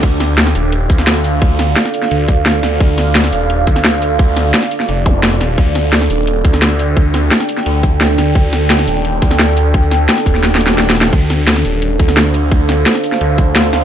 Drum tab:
CC |x-----------------------------------------------|------------------------------------------------|------------------------------------------------|------------------------------------------------|
HH |x-----x-----x-----o-----x-----x-----x-----o-----|x-----x-----x-----o-----x-----x-----x-----o-----|x-----x-----x-----o-----x-----x-----x-----o-----|x-----x-----x-----o-----x-----x-----x-----o-----|
SH |------x--------x--x-----------x--------x--x-----|------x--------x--x-----------x--------x--x-----|------x--------x--x-----------x--------x--x-----|---x--x--------x--x-----------x--------x--x-----|
SD |------o-----o--o-----------------o--o-----------|------o-----o--o-----o--------------o-----o-----|------o-----o--o-----------------o--o-----------|------o-----o--o-----o--------------o-----o-----|
BD |o-----------------------------o-----------------|o-----------------------------o-----------------|o-----------------------------o-----------------|o-----------------------------o-----------------|

CC |------------------------------------------------|------------------------------------------------|------------------------------------------------|------------------------------------------------|
HH |x-----x-----x-----o-----x-----x-----x-----o-----|x-----x-----x-----o-----x-----x-----x-----o-----|x-----x-----x-----o-----x-----x-----x-----o-----|x-----x-----x-----o-----x-----x-----x-----o-----|
SH |------x--------x--x-----------x--------x--x-----|------x--------x--x-----------x--------x--x-----|------x--------x--x-----------x--------x--x-----|---x--x--------x--x--------x--x--------x--x-----|
SD |------o-----o--o-----------------o--o-----------|------o-----o--o-----o--------------o-----o-----|------o-----o--o-----------------o--o-----------|------o-----o--o-----o--o---o---o---o---o---o---|
BD |o-----------------------------o-----------------|o-----------------------------o-----------------|o-----------------------------o-----------------|o-----------------o-----------------------------|

CC |x-----------------------------------------------|------------------------------------------------|
HH |x-----x-----x-----o-----x-----x-----x-----o-----|x-----x-----x-----o-----x-----x-----x-----o-----|
SH |------x--------x--x-----------x--------x--x-----|------x--------x--x-----------x--------x--x-----|
SD |------o-----o--o-----------------o--o-----------|------o-----o--o-----o--------------o-----o-----|
BD |o-----------------------------o-----------------|o-----------------------------o-----------------|